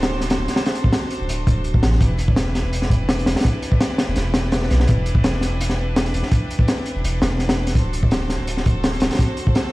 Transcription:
0.00 0.38 D1 medium
0.00 1.97 D4 medium
0.00 1.97 F#4 medium
0.00 1.97 A4 medium
0.00 1.97 C5 medium
0.00 snare loud
0.00 closed hi-hat medium
0.21 snare medium
0.21 closed hi-hat medium
0.30 snare loud
0.30 closed hi-hat medium
0.39 0.48 D1 loud
0.48 snare soft
0.48 closed hi-hat medium
0.56 snare loud
0.56 closed hi-hat medium
0.66 snare loud
0.66 closed hi-hat medium
0.75 closed hi-hat medium
0.84 kick medium
0.92 snare loud
0.92 closed hi-hat medium
1.10 closed hi-hat medium
1.21 1.28 D1 medium
1.29 1.81 D1 loud
1.29 closed hi-hat medium
1.47 kick loud
1.47 closed hi-hat medium
1.64 closed hi-hat medium
1.74 kick medium
1.83 1.99 A1 medium
1.83 snare loud
1.83 closed hi-hat medium
1.92 snare soft
2.01 2.63 E1 loud
2.01 9.72 D4 medium
2.01 7.72 E4 medium
2.01 7.72 G4 medium
2.01 7.72 B4 medium
2.01 kick loud
2.01 closed hi-hat medium
2.19 closed hi-hat medium
2.28 kick loud
2.36 snare loud
2.36 closed hi-hat medium
2.55 snare medium
2.55 closed hi-hat medium
2.64 3.25 E1 medium
2.73 closed hi-hat medium
2.82 snare soft
2.90 kick medium
2.90 closed hi-hat medium
3.09 snare loud
3.09 closed hi-hat medium
3.19 closed hi-hat soft
3.26 3.35 E1 loud
3.26 snare loud
3.26 closed hi-hat medium
3.36 snare medium
3.36 closed hi-hat medium
3.40 snare medium
3.40 closed hi-hat medium
3.44 kick loud
3.44 closed hi-hat medium
3.62 closed hi-hat medium
3.72 kick loud
3.81 snare loud
3.81 closed hi-hat loud
3.98 snare loud
3.98 closed hi-hat medium
4.08 4.16 E1 medium
4.16 4.69 E1 loud
4.16 snare medium
4.16 closed hi-hat medium
4.34 snare loud
4.34 closed hi-hat medium
4.52 snare loud
4.52 closed hi-hat medium
4.62 snare soft
4.70 4.87 B1 medium
4.70 snare medium
4.70 closed hi-hat medium
4.80 snare soft
4.87 5.50 E1 medium
4.87 kick loud
4.87 closed hi-hat medium
5.06 closed hi-hat medium
5.15 kick loud
5.24 snare loud
5.24 closed hi-hat medium
5.41 snare medium
5.41 closed hi-hat medium
5.51 6.12 E1 medium
5.61 closed hi-hat medium
5.70 snare soft
5.96 snare loud
5.96 closed hi-hat medium
6.06 closed hi-hat soft
6.14 6.23 E1 loud
6.14 closed hi-hat medium
6.23 snare soft
6.32 kick loud
6.32 closed hi-hat medium
6.50 closed hi-hat medium
6.59 kick loud
6.68 snare loud
6.68 closed hi-hat loud
6.86 closed hi-hat medium
6.95 7.03 E1 medium
7.04 7.22 E1 loud
7.04 closed hi-hat medium
7.22 7.74 E1 medium
7.22 snare loud
7.22 closed hi-hat medium
7.39 snare soft
7.39 closed hi-hat medium
7.49 snare loud
7.49 closed hi-hat medium
7.67 snare soft
7.67 closed hi-hat medium
7.75 8.37 D1 loud
7.75 9.72 F#4 medium
7.75 9.72 A4 medium
7.75 9.72 C5 medium
7.75 kick loud
7.75 closed hi-hat medium
7.93 closed hi-hat medium
8.03 kick loud
8.11 snare loud
8.11 closed hi-hat medium
8.29 snare medium
8.29 closed hi-hat medium
8.39 9.00 D1 medium
8.47 closed hi-hat medium
8.57 snare soft
8.66 kick loud
8.66 closed hi-hat medium
8.83 snare loud
8.83 closed hi-hat medium
8.93 closed hi-hat soft
9.00 9.10 D1 loud
9.00 snare loud
9.00 closed hi-hat medium
9.11 snare medium
9.11 closed hi-hat medium
9.15 snare medium
9.15 closed hi-hat medium
9.19 kick loud
9.19 closed hi-hat medium
9.37 closed hi-hat medium
9.47 kick medium
9.55 snare loud
9.55 closed hi-hat medium

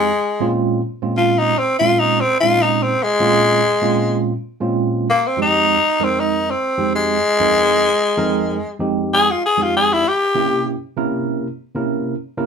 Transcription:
0.00 0.50 G#3 loud
0.40 0.80 A#2 medium
0.40 0.80 G#3 medium
0.40 0.80 C4 medium
0.40 0.80 C#4 medium
0.40 0.80 F4 loud
1.02 1.52 A#2 medium
1.02 1.52 G#3 medium
1.02 1.52 C4 medium
1.02 1.52 C#4 medium
1.02 1.52 F4 medium
1.17 1.40 F4 medium
1.38 1.60 D#4 medium
1.58 1.77 C4 medium
1.79 2.20 A#2 medium
1.79 2.20 G#3 medium
1.79 2.20 C4 medium
1.79 2.20 C#4 medium
1.79 2.01 F4 loud
1.79 2.20 F4 medium
1.99 2.22 D#4 medium
2.21 2.39 C4 medium
2.40 2.92 A#2 medium
2.40 2.92 G#3 medium
2.40 2.92 C4 medium
2.40 2.92 C#4 medium
2.40 2.92 D#4 medium
2.40 2.64 F4 loud
2.62 2.84 D#4 medium
2.83 3.05 C4 medium
3.03 4.22 G#3 loud
3.20 3.59 A#2 medium
3.20 3.60 G#3 medium
3.20 3.60 C4 medium
3.20 3.60 C#4 medium
3.20 3.60 F4 loud
3.82 4.32 A#2 medium
3.82 4.32 G#3 medium
3.82 4.32 C4 medium
3.82 4.32 C#4 medium
3.82 4.32 F4 loud
4.61 5.07 A#2 medium
4.61 5.07 G#3 medium
4.61 5.07 C4 medium
4.61 5.07 C#4 medium
4.61 5.07 F4 medium
5.10 5.29 A#3 loud
5.27 5.39 C4 medium
5.37 5.77 F2 medium
5.37 5.77 G#3 medium
5.37 5.77 C4 medium
5.37 5.77 D#4 medium
5.37 5.77 G4 medium
5.42 6.06 D#4 loud
6.00 6.49 F2 medium
6.00 6.49 G#3 medium
6.00 6.49 C4 medium
6.00 6.49 D#4 medium
6.00 6.50 A#4 medium
6.04 6.21 C4 medium
6.20 6.52 D#4 medium
6.51 6.93 C4 medium
6.78 7.17 F2 medium
6.78 7.17 G#3 medium
6.78 7.17 C4 medium
6.78 7.17 D#4 medium
6.78 7.17 G4 medium
6.95 8.77 G#3 loud
7.40 7.88 F2 medium
7.40 7.88 G#3 medium
7.40 7.88 C4 medium
7.40 7.89 D#4 medium
7.40 7.89 A#4 medium
8.17 8.57 F2 loud
8.17 8.57 G#3 medium
8.17 8.57 C4 medium
8.17 8.57 D#4 medium
8.17 8.57 A#4 loud
8.80 9.29 F2 medium
8.80 9.29 G#3 medium
8.80 9.29 C4 medium
8.80 9.29 D#4 medium
8.80 9.29 G4 medium
9.14 9.32 G#4 loud
9.31 9.43 F4 medium
9.46 9.64 G#4 medium
9.57 10.03 F2 medium
9.57 10.04 G#3 medium
9.57 10.04 C4 medium
9.57 10.04 D#4 medium
9.57 10.04 G4 medium
9.62 9.74 F4 medium
9.76 9.94 G#4 medium
9.93 10.10 E4 medium
10.08 10.66 G4 medium
10.35 10.74 C3 medium
10.35 10.74 A#3 medium
10.35 10.75 C#4 medium
10.35 10.75 E4 medium
10.35 10.75 G4 medium
10.97 11.46 C3 medium
10.97 11.46 A#3 medium
10.97 11.46 C#4 medium
10.97 11.47 E4 medium
10.97 11.47 A#4 loud
11.75 12.14 C3 medium
11.75 12.14 A#3 medium
11.75 12.14 C#4 medium
11.75 12.14 E4 medium
11.75 12.14 A#4 medium
12.37 12.46 C3 medium
12.37 12.46 A#3 medium
12.37 12.46 C#4 medium
12.37 12.46 E4 medium
12.37 12.46 A#4 loud

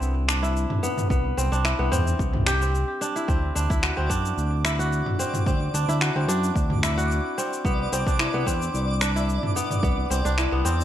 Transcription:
0.00 0.66 C2 medium
0.00 0.89 C4 loud
0.00 0.28 D4 medium
0.00 0.42 E4 medium
0.00 shaker soft
0.28 1.51 D4 medium
0.28 finger snap medium
0.28 shaker medium
0.43 1.64 E4 medium
0.43 shaker soft
0.57 shaker soft
0.70 mid tom medium
0.83 1.10 B3 medium
0.83 shaker medium
0.98 mid tom medium
0.98 shaker soft
1.10 1.33 C2 medium
1.10 1.43 B3 medium
1.10 kick loud
1.10 shaker soft
1.37 1.49 C2 loud
1.37 1.85 C4 medium
1.37 shaker medium
1.52 1.74 C2 medium
1.52 3.01 D4 medium
1.52 shaker soft
1.65 3.15 E4 medium
1.65 finger snap medium
1.65 shaker soft
1.79 1.90 C2 medium
1.79 1.98 B3 medium
1.92 2.15 E2 loud
1.92 2.61 C4 loud
1.92 mid tom medium
1.92 shaker medium
2.07 shaker soft
2.19 2.84 C2 medium
2.19 kick loud
2.19 shaker soft
2.33 mid tom medium
2.46 3.88 G4 loud
2.46 finger snap medium
2.46 shaker medium
2.61 3.28 C4 medium
2.61 shaker soft
2.75 shaker soft
3.01 3.55 D4 medium
3.01 shaker medium
3.16 3.69 E4 medium
3.16 shaker soft
3.28 3.51 D2 medium
3.28 3.97 C4 medium
3.28 10.84 D5 medium
3.28 kick loud
3.28 shaker soft
3.55 3.68 D2 loud
3.55 4.09 D4 medium
3.55 shaker medium
3.70 4.64 E4 medium
3.70 kick loud
3.70 shaker soft
3.82 4.79 F#4 medium
3.82 finger snap medium
3.82 shaker soft
3.97 4.08 D2 medium
3.97 5.19 C4 medium
4.10 4.33 F#2 loud
4.10 5.74 D4 medium
4.10 kick medium
4.10 shaker medium
4.25 shaker soft
4.37 5.02 D2 loud
4.37 shaker soft
4.65 5.88 E4 medium
4.65 finger snap medium
4.65 shaker medium
4.79 6.01 F#4 medium
4.79 shaker soft
4.93 shaker soft
5.06 mid tom medium
5.19 5.46 C4 medium
5.19 shaker medium
5.34 mid tom medium
5.34 shaker soft
5.46 5.69 D2 loud
5.46 6.16 C4 medium
5.46 kick loud
5.46 shaker soft
5.74 5.86 D2 medium
5.74 6.28 D4 medium
5.74 shaker medium
5.88 6.10 D2 medium
5.88 6.82 E4 medium
5.88 shaker soft
6.01 6.97 F#4 medium
6.01 finger snap medium
6.01 shaker soft
6.16 6.26 D2 medium
6.16 7.37 C4 medium
6.28 6.51 F#2 loud
6.28 7.96 D4 medium
6.28 shaker medium
6.44 shaker soft
6.55 7.20 D2 loud
6.55 kick loud
6.55 shaker soft
6.70 mid tom medium
6.83 8.19 E4 medium
6.83 finger snap medium
6.83 shaker medium
6.97 8.44 F#4 medium
6.97 shaker soft
7.11 shaker soft
7.38 7.71 C4 medium
7.38 shaker medium
7.53 shaker soft
7.65 7.87 C2 medium
7.65 7.99 B3 medium
7.65 kick loud
7.65 shaker soft
7.92 8.04 C2 medium
7.92 8.40 C4 medium
7.92 shaker medium
8.07 8.29 C2 medium
8.07 9.01 D4 medium
8.07 kick loud
8.07 shaker soft
8.19 9.15 E4 medium
8.19 finger snap medium
8.19 shaker soft
8.34 8.44 C2 medium
8.34 8.52 B3 medium
8.46 8.69 E2 loud
8.46 9.62 C4 medium
8.46 kick medium
8.46 shaker medium
8.62 shaker soft
8.74 9.39 C2 loud
8.74 shaker soft
9.01 10.25 D4 medium
9.01 finger snap medium
9.01 shaker medium
9.16 10.38 E4 medium
9.16 shaker soft
9.29 shaker soft
9.43 mid tom medium
9.56 9.83 B3 medium
9.56 shaker medium
9.71 mid tom medium
9.71 shaker soft
9.83 10.06 C2 medium
9.83 10.16 B3 medium
9.83 kick loud
9.83 shaker soft
10.10 10.22 C2 loud
10.10 10.58 C4 medium
10.10 shaker medium
10.25 10.47 C2 medium
10.25 10.84 D4 medium
10.25 shaker soft
10.38 10.84 E4 medium
10.38 finger snap medium
10.38 shaker soft
10.52 10.63 C2 medium
10.52 10.71 B3 medium
10.65 10.84 E2 loud
10.65 10.84 C4 medium
10.65 shaker medium
10.81 shaker soft

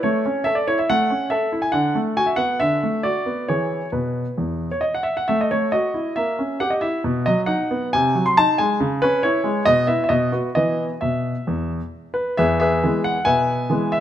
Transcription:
0.03 0.23 A3 medium
0.03 0.45 C#5 medium
0.26 0.47 C#4 medium
0.44 0.68 A4 medium
0.44 0.55 E5 medium
0.55 0.66 D5 medium
0.68 0.89 E4 medium
0.68 0.77 C#5 medium
0.79 0.88 E5 medium
0.90 1.09 A3 medium
0.90 1.27 F#5 medium
1.10 1.32 C#4 soft
1.30 1.53 A4 medium
1.30 1.59 E5 medium
1.52 1.74 E4 soft
1.62 1.73 G#5 medium
1.72 1.94 D3 medium
1.72 1.98 F#5 medium
1.95 2.17 A3 medium
2.17 2.39 F#4 medium
2.17 2.27 G#5 medium
2.26 2.38 E5 medium
2.36 2.60 B3 medium
2.36 2.59 F#5 medium
2.60 2.81 D3 medium
2.60 3.04 E5 medium
2.83 3.06 A3 soft
3.03 3.27 F#4 soft
3.03 3.48 D5 medium
3.26 3.48 B3 soft
3.48 3.80 E3 soft
3.48 3.84 E4 soft
3.48 3.85 G#4 soft
3.48 3.89 C#5 medium
3.92 4.24 B2 soft
3.92 4.40 B4 medium
4.38 4.69 E2 soft
4.71 4.83 C#5 medium
4.81 4.93 D#5 medium
4.95 5.06 F#5 medium
5.03 5.15 E5 medium
5.17 5.28 F#5 medium
5.28 5.50 A3 medium
5.28 5.39 E5 medium
5.41 5.51 D#5 medium
5.51 5.74 A3 soft
5.51 5.70 C#5 medium
5.72 5.96 F#4 soft
5.72 6.12 D#5 medium
5.94 6.16 E4 soft
6.16 6.38 A#3 medium
6.16 6.60 E5 medium
6.39 6.61 C#4 soft
6.60 6.83 G4 soft
6.60 6.71 F#5 medium
6.70 6.82 D#5 medium
6.81 7.04 E4 soft
6.81 7.01 E5 medium
7.04 7.25 B2 medium
7.26 7.50 F#3 medium
7.26 7.39 D#5 medium
7.46 7.71 D#4 medium
7.46 7.87 F#5 medium
7.71 7.92 B3 medium
7.93 8.15 C3 medium
7.93 8.26 G#5 medium
8.15 8.38 F#3 soft
8.26 8.36 C6 medium
8.37 8.60 D#4 medium
8.37 8.59 A5 loud
8.58 8.80 G#3 medium
8.58 8.78 G#5 medium
8.80 9.01 C#3 medium
9.02 9.25 C#4 medium
9.02 9.21 B4 medium
9.23 9.46 E4 medium
9.23 9.63 C#5 medium
9.44 9.66 G#3 medium
9.65 9.88 B2 medium
9.65 9.86 D#5 loud
9.87 10.04 B3 soft
9.87 10.05 E4 soft
9.87 10.02 E5 medium
10.04 10.11 E5 medium
10.09 10.32 B2 medium
10.09 10.37 D#5 medium
10.32 10.49 B3 soft
10.32 10.49 F#4 soft
10.55 10.88 E3 soft
10.55 10.92 B3 soft
10.55 10.92 E4 soft
10.55 10.83 D#5 medium
11.01 11.34 B2 soft
11.01 11.69 E5 medium
11.47 11.79 E2 soft
12.14 12.37 B4 medium
12.37 12.81 E2 medium
12.37 12.59 G#4 medium
12.37 12.59 B4 medium
12.37 12.58 E5 medium
12.60 13.02 G#4 medium
12.60 13.02 B4 medium
12.60 13.00 E5 medium
12.84 13.15 E3 soft
12.84 13.15 G#3 soft
12.84 13.16 B3 medium
13.04 13.26 F#5 medium
13.25 13.69 B2 medium
13.25 13.88 B4 medium
13.25 13.88 E5 medium
13.25 13.92 G#5 medium
13.70 14.00 E3 soft
13.70 14.00 G#3 soft
13.70 14.00 B3 medium
13.92 14.00 E5 medium

